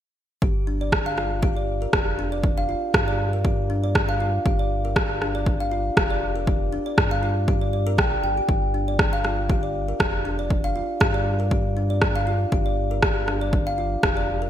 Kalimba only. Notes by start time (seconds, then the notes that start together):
0.42 G4
0.67 D4
0.81 D5
1.06 F5
1.17 F4
1.43 G4
1.57 D5
1.82 A#4
1.93 G4
2.19 D4
2.32 D5
2.58 F5
2.69 F4
2.94 G4
3.08 D5
3.33 A#4
3.45 G4
3.70 D4
3.84 D5
4.09 F5
4.20 F4
4.46 G4
4.59 D5
4.85 A#4
4.96 G4
5.22 D4
5.35 D5
5.60 F5
5.72 F4
5.97 G4
6.10 D5
6.36 A#4
6.47 G4
6.73 D4
6.86 D5
7.11 F5
7.23 F4
7.48 G4
7.61 D5
7.73 D5
7.87 A#4
7.98 G5
8.24 G5
8.37 G4
8.49 G4
8.74 D4
8.88 D5
9.13 F5
9.24 F4
9.50 G4
9.63 D5
9.88 A#4
10.00 G4
10.25 D4
10.39 D5
10.64 F5
10.76 F4
11.01 G4
11.14 D5
11.40 A#4
11.51 G4
11.77 D4
11.90 D5
12.16 F5
12.27 F4
12.52 G4
12.66 D5
12.91 A#4
13.03 G4
13.28 D4
13.41 D5
13.67 F5
13.78 F4
14.03 G4
14.17 D5
14.42 A#4